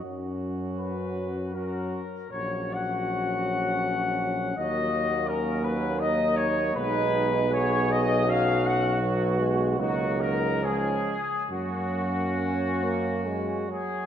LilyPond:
<<
  \new Staff \with { instrumentName = "Trumpet section" } { \time 3/4 \key ges \major \tempo 4 = 80 r4 ces''4 bes'4 | des''8 ges''2~ ges''8 | \key fis \major dis''4 ais'8 b'8 dis''8 cis''8 | b'4 cis''8 dis''8 eis''8 fis''8 |
r4 fis'8 ais'8 gis'4 | fis'2~ fis'8 gis'8 | }
  \new Staff \with { instrumentName = "Flugelhorn" } { \time 3/4 \key ges \major ges'2 ges'8 r8 | ges'2. | \key fis \major fis'4 cis'4 dis'4 | dis'4 gis'4 fis'4~ |
fis'4 dis'4 cis'8 r8 | cis'2~ cis'8 r8 | }
  \new Staff \with { instrumentName = "Euphonium" } { \time 3/4 \key ges \major des'2 des'8 r8 | des'2. | \key fis \major ais2. | b2 cis'4 |
b4 ais4 gis8 r8 | ais2~ ais8 r8 | }
  \new Staff \with { instrumentName = "Trombone" } { \clef bass \time 3/4 \key ges \major ges2 ges8 r8 | ges2. | \key fis \major fis8 fis2~ fis8 | gis4 fis2 |
fis8 gis8 fis4 eis8 r8 | fis4 cis'8 ais8 gis8 fis8 | }
  \new Staff \with { instrumentName = "Tuba" } { \clef bass \time 3/4 \key ges \major ges,2~ ges,8 r8 | bes,,2. | \key fis \major dis,2. | b,,2.~ |
b,,4 cis,4. r8 | fis,2~ fis,8 r8 | }
>>